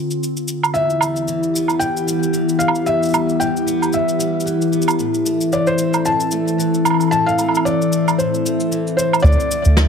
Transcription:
Already playing: ambient pad D3 C4 F4
0.11 cabasa
0.23 cabasa
0.37 cabasa
0.48 cabasa
0.63 cabasa, low woodblock
0.74 steel-string acoustic guitar E2, ambient pad E3 B3 G4, felt piano E5, cabasa
0.90 cabasa
1.01 steel-string acoustic guitar G3, cabasa, low woodblock
1.16 cabasa
1.28 steel-string acoustic guitar E3, cabasa
1.43 cabasa
1.54 steel-string acoustic guitar B3, cabasa
1.68 cabasa, low woodblock
1.79 steel-string acoustic guitar E2, felt piano G5, cabasa
1.97 cabasa
2.07 steel-string acoustic guitar G3, cabasa
2.23 cabasa
2.33 steel-string acoustic guitar E3, cabasa
2.49 cabasa
2.59 steel-string acoustic guitar B3, felt piano F5, cabasa
2.68 low woodblock
2.75 cabasa
2.86 steel-string acoustic guitar E2, felt piano E5, cabasa
3.03 cabasa
3.05 cabasa
3.08 cabasa
3.10 cabasa
3.12 steel-string acoustic guitar G3, cabasa
3.14 cabasa, low woodblock
3.29 cabasa
3.40 steel-string acoustic guitar E3, felt piano G5, cabasa
3.57 cabasa
3.67 steel-string acoustic guitar B3, cabasa
3.82 cabasa, low woodblock
3.93 steel-string acoustic guitar E2, felt piano E5, cabasa
4.08 cabasa
4.19 steel-string acoustic guitar G3, cabasa
4.40 cabasa
4.45 steel-string acoustic guitar E3, cabasa
4.61 cabasa
4.72 steel-string acoustic guitar B3, cabasa
4.82 cabasa
4.88 cabasa, low woodblock
4.90 cabasa
4.98 steel-string acoustic guitar A2, ambient pad C4 A4, cabasa
5.14 cabasa
5.25 steel-string acoustic guitar A3, cabasa
5.41 cabasa
5.52 steel-string acoustic guitar E3, felt piano D5, cabasa
5.67 felt piano C5, cabasa
5.78 steel-string acoustic guitar C4, cabasa
5.93 cabasa, low woodblock
6.05 steel-string acoustic guitar A2, felt piano A5, cabasa
6.20 cabasa
6.31 steel-string acoustic guitar A3, cabasa
6.48 cabasa
6.58 steel-string acoustic guitar E3, cabasa
6.74 cabasa
6.85 steel-string acoustic guitar C4, cabasa, low woodblock
6.90 low woodblock
6.94 low woodblock
7.00 cabasa, low woodblock
7.03 low woodblock
7.08 felt piano A5, low woodblock
7.12 steel-string acoustic guitar A2, cabasa
7.26 felt piano F5, cabasa
7.38 steel-string acoustic guitar A3, cabasa, low woodblock
7.49 low woodblock
7.55 cabasa, low woodblock
7.65 steel-string acoustic guitar E3, felt piano D5, cabasa
7.82 cabasa
7.92 steel-string acoustic guitar C4, cabasa
8.08 cabasa, low woodblock
8.18 steel-string acoustic guitar A2, felt piano C5, cabasa
8.34 cabasa
8.45 steel-string acoustic guitar A3, cabasa
8.60 cabasa
8.71 steel-string acoustic guitar E3, cabasa
8.87 cabasa
8.97 steel-string acoustic guitar C4, felt piano C5, cabasa
9.13 cabasa, low woodblock
9.20 ambient pad F3 D4 C5, felt piano D5, cabasa
9.24 sub bass D2, steel-string acoustic guitar D3, kick, cabasa
9.32 cabasa
9.40 cabasa
9.51 steel-string acoustic guitar A3, cabasa
9.65 sub bass D2, cabasa
9.77 steel-string acoustic guitar A3, snare, cabasa

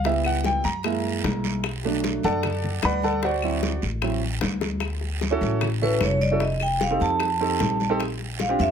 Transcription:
Already playing: upright bass C#2
0.04 grand piano G3 B3 E4 E5, high bongo, high conga, long guiro
0.24 grand piano F#5, high bongo, high conga, claves
0.44 grand piano G5, high bongo, high conga, short guiro
0.64 upright bass F#2, grand piano A#5, high bongo, high conga, short guiro
0.83 grand piano G#3 A#3 E4, high bongo, high conga, long guiro, claves
1.05 high conga
1.24 upright bass B1, high bongo, low bongo, high conga, short guiro
1.44 high bongo, high conga, short guiro
1.64 high bongo, high conga, long guiro, claves
1.84 grand piano F#3 A3 D4, high bongo, high conga
2.04 high bongo, high conga, short guiro
2.23 upright bass F#2, grand piano A4 D5 F#5 A5, high bongo, high conga, short guiro
2.43 high bongo, high conga, low conga, long guiro, claves
2.64 high conga, low conga
2.83 upright bass D2, grand piano B4 D5 F#5 B5, high bongo, low bongo, high conga, short guiro, claves
3.02 grand piano A4 D5 F#5 A5, high bongo, high conga, short guiro
3.23 grand piano F#4 C5 D5 F#5, high bongo, high conga, long guiro
3.42 grand piano F#3 C4 E4, high bongo, high conga, claves
3.63 high bongo, high conga, short guiro
3.82 upright bass A1, high bongo, high conga, short guiro
4.02 grand piano F#3 C4 E4, high bongo, high conga, long guiro, claves
4.23 high conga
4.41 upright bass D2, high bongo, low bongo, high conga, short guiro
4.61 high bongo, high conga, short guiro
4.80 high bongo, high conga, long guiro, claves
5.01 high bongo, high conga
5.21 high bongo, high conga, short guiro
5.31 grand piano C#4 E4 F#4 A4
5.41 upright bass A1, high bongo, high conga, short guiro
5.61 high bongo, high conga, low conga, long guiro, claves
5.82 grand piano C#4 E4 F#4 A4, vibraphone B4, high conga, low conga
6.01 upright bass F1, vibraphone C#5, high bongo, low bongo, high conga, short guiro, claves
6.21 vibraphone D5, high bongo, high conga, short guiro
6.31 grand piano C#4 E4 F#4 A4
6.40 vibraphone D#5, high bongo, high conga, long guiro
6.60 vibraphone G5, high bongo, high conga, claves
6.81 vibraphone F5, high bongo, high conga, short guiro
6.91 grand piano C4 D#4 G4 A4
7.00 upright bass F2, vibraphone A5, high bongo, high conga, short guiro
7.20 high bongo, high conga, long guiro, claves
7.40 grand piano C4 D#4 G4 A4, high conga
7.60 upright bass A#1, high bongo, low bongo, high conga, short guiro
7.80 high bongo, high conga, short guiro
7.90 grand piano C4 D#4 G4 A4
8.00 high bongo, high conga, long guiro, claves
8.20 high bongo, high conga
8.39 vibraphone F5, high bongo, high conga, short guiro
8.49 grand piano C4 D4 F4 G4
8.59 upright bass F2, vibraphone E5, high bongo, high conga, short guiro

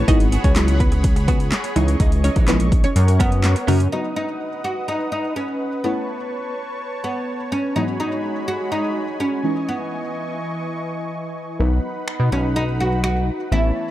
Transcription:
Already playing: supersaw synth C#5
0.08 analog synth bass G#1, synth stab F#3 G#3 B3 E4 F#4, clean electric guitar B3 F#4 G#4, synth pluck D#4 D#5, supersaw synth G#4, kick, closed hi-hat
0.19 muted clean electric guitar stroke, closed hi-hat
0.32 clean electric guitar B3 F#4 G#4, closed hi-hat
0.44 analog synth bass C#2, clean electric guitar B3 F#4 G#4, synth pluck C#4 C#5, kick, closed hi-hat
0.56 synth stab F#3 G#3 B3 E4 F#4, muted clean electric guitar stroke, snare, clap, closed hi-hat
0.68 muted clean electric guitar stroke, closed hi-hat
0.80 synth pluck B3 B4, kick, closed hi-hat
0.92 muted clean electric guitar stroke, closed hi-hat
1.04 kick, closed hi-hat
1.16 muted clean electric guitar stroke, closed hi-hat
1.28 clean electric guitar B3 F#4 G#4, synth pluck B3 B4, kick, closed hi-hat
1.40 muted clean electric guitar stroke, closed hi-hat
1.52 snare, clap, closed hi-hat
1.64 muted clean electric guitar stroke, closed hi-hat
1.76 analog synth bass C#2, synth stab E3 G#3 C#4 D#4 E4, clean electric guitar E3 G#3 D#4, supersaw synth D#5 C#6, closed hi-hat
1.88 muted clean electric guitar stroke, closed hi-hat
2.00 analog synth bass C#2, clean electric guitar E3 G#3 D#4, kick, closed hi-hat
2.12 muted clean electric guitar stroke, closed hi-hat
2.24 clean electric guitar E3 G#3 D#4, synth pluck C#4 C#5, closed hi-hat
2.36 analog synth bass A#1, clean electric guitar E3 G#3 D#4, kick, closed hi-hat
2.48 synth stab E3 G#3 C#4 D#4 E4, synth pluck B3 B4, muted clean electric guitar stroke, snare, clap, closed hi-hat
2.60 muted clean electric guitar stroke, closed hi-hat
2.72 kick, closed hi-hat
2.84 synth pluck C#4 C#5, muted clean electric guitar stroke, closed hi-hat
2.96 analog synth bass F#2, supersaw synth A#4 C#5 F#5, closed hi-hat
3.08 muted clean electric guitar stroke, closed hi-hat
3.19 oud B3, clean electric guitar C#4 F#4 A#4, kick, closed hi-hat
3.32 muted clean electric guitar stroke, closed hi-hat
3.43 muted clean electric guitar stroke, snare, clap, closed hi-hat
3.56 muted clean electric guitar stroke, closed hi-hat
3.67 analog synth bass F#2, synth stab C#3 F#3 A#3 C#4 F#4, clean electric guitar C#4 F#4 A#4, oud C#4, open hi-hat
3.80 muted clean electric guitar stroke, closed hi-hat
3.91 synth stab F#3 B3 D#4 F#4, oud D#4, supersaw synth B4 D#5 F#5 D#6
4.16 oud D#4
4.64 oud F#4
4.88 oud D#4
5.12 oud D#4
5.36 oud C#4
5.83 synth stab A3 B3 C#4 E4, oud B3, supersaw synth C#5 A5 C#6
7.04 oud B3
7.52 oud C#4
7.75 synth stab G#2 E3 F#3 G#3 B3, supersaw synth G#3 F#4 G#5 B5, oud D#4
8.00 oud D#4
8.48 oud F#4
8.72 oud D#4
9.20 oud C#4
9.43 synth stab E3 G#3 C#4 D#4, supersaw synth E3 D#5 C#6
9.69 oud B3
11.59 analog synth bass B1, synth stab D#3 F#3 B3 D#4, supersaw synth D#4 B4 F#5 B5
12.08 finger snap
12.20 analog synth bass B2
12.32 analog synth bass B1, oud C#4
12.56 oud D#4
12.80 oud F#4
13.04 oud F#4, finger snap
13.52 analog synth bass A1, synth stab E3 A3 B3 C#4, supersaw synth E3 C#5 A5 B5, oud E4

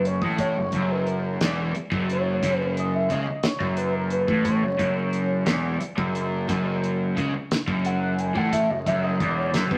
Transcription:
Already playing: picked electric bass F#1, overdriven electric guitar F#2
0.05 analog synth lead C#5, closed hi-hat
0.22 picked electric bass A1, overdriven electric guitar A2, analog synth lead D#5, kick
0.38 analog synth lead C#5, kick, closed hi-hat
0.57 picked electric bass F#1, overdriven electric guitar F#2
0.72 picked electric bass F#1, overdriven electric guitar F#2, kick, closed hi-hat
0.91 analog synth lead B4
1.07 analog synth lead A#4, closed hi-hat
1.41 picked electric bass E1, overdriven electric guitar E2, snare, closed hi-hat
1.75 muted overdriven electric guitar stroke, muted picked electric bass stroke, closed hi-hat
1.91 picked electric bass F#1, overdriven electric guitar F#2, kick
2.10 analog synth lead C#5, closed hi-hat
2.43 picked electric bass F#1, overdriven electric guitar F#2, kick, closed hi-hat
2.59 analog synth lead B4
2.77 analog synth lead D#5, closed hi-hat
2.95 analog synth lead E5
3.10 picked electric bass C#2, overdriven electric guitar C#3, analog synth lead D#5, kick, closed hi-hat
3.26 muted overdriven electric guitar stroke, muted picked electric bass stroke
3.43 analog synth lead C#5, snare, closed hi-hat
3.60 picked electric bass F#1, overdriven electric guitar F#2, kick
3.77 analog synth lead B4, closed hi-hat
3.95 analog synth lead A#4
4.10 analog synth lead B4, closed hi-hat
4.28 picked electric bass A1, overdriven electric guitar A2, kick
4.44 analog synth lead C#5, kick, closed hi-hat
4.62 picked electric bass F#1, overdriven electric guitar F#2
4.78 picked electric bass F#1, overdriven electric guitar F#2, kick, closed hi-hat
5.13 closed hi-hat
5.46 picked electric bass E1, overdriven electric guitar E2, snare, closed hi-hat
5.80 muted picked electric bass stroke, muted overdriven electric guitar stroke, closed hi-hat
5.97 picked electric bass F#1, overdriven electric guitar F#2, kick
6.15 closed hi-hat
6.48 picked electric bass F#1, overdriven electric guitar F#2, kick, closed hi-hat
6.84 closed hi-hat
7.16 picked electric bass C#2, overdriven electric guitar C#3, kick, closed hi-hat
7.32 muted picked electric bass stroke, muted overdriven electric guitar stroke
7.51 snare, closed hi-hat
7.67 picked electric bass F#1, overdriven electric guitar F#2, kick
7.85 analog synth lead F#5, closed hi-hat
8.03 analog synth lead F#5
8.19 analog synth lead G#5, closed hi-hat
8.34 picked electric bass A1, overdriven electric guitar A2, analog synth lead F#5, kick
8.53 analog synth lead E5, kick, closed hi-hat
8.69 picked electric bass F#1, overdriven electric guitar F#2, analog synth lead D#5
8.86 picked electric bass F#1, overdriven electric guitar F#2, analog synth lead E5, kick, closed hi-hat
9.03 analog synth lead D#5
9.20 picked electric bass E1, overdriven electric guitar E2, analog synth lead D#5, kick, closed hi-hat
9.37 analog synth lead C#5
9.53 picked electric bass F#1, overdriven electric guitar F#2, analog synth lead A#4, snare, closed hi-hat
9.71 picked electric bass B1, overdriven electric guitar B2, analog synth lead B4, kick

